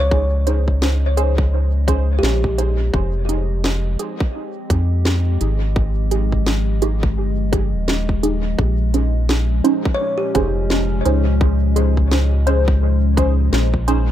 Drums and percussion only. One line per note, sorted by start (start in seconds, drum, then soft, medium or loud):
0.11 kick loud
0.47 closed hi-hat medium
0.68 kick medium
0.82 snare medium
1.17 closed hi-hat soft
1.38 kick loud
1.88 kick loud
1.88 closed hi-hat medium
2.23 snare medium
2.44 kick medium
2.58 closed hi-hat medium
2.94 kick loud
3.29 closed hi-hat medium
3.64 snare medium
3.99 closed hi-hat soft
4.20 kick loud
4.70 kick loud
4.70 closed hi-hat soft
5.05 snare medium
5.41 closed hi-hat medium
5.76 kick loud
6.11 closed hi-hat soft
6.32 kick medium
6.46 snare medium
6.82 closed hi-hat soft
7.03 kick loud
7.53 kick loud
7.53 closed hi-hat soft
7.88 snare medium
8.09 kick medium
8.23 closed hi-hat soft
8.59 kick loud
8.94 closed hi-hat soft
9.29 snare medium
9.65 closed hi-hat soft
9.85 kick loud
10.35 kick loud
10.35 closed hi-hat soft
10.70 snare medium
11.05 closed hi-hat soft
11.41 kick loud
11.76 closed hi-hat medium
11.97 kick medium
12.11 snare medium
12.47 closed hi-hat soft
12.68 kick medium
13.17 kick medium
13.17 closed hi-hat soft
13.53 snare medium
13.74 kick medium
13.88 closed hi-hat soft